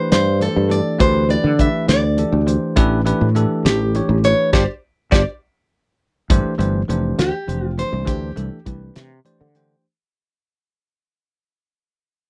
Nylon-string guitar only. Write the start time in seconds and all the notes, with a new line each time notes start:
Already playing: C5
0.13 C5
0.42 A4
0.71 D5
1.01 C5
1.31 D5
1.61 E5
1.89 D5
3.66 G4
4.25 C#5
4.53 G4 C5 D5
5.12 G4 C5 D5
7.20 G4
7.66 F4
7.79 C5
8.08 G4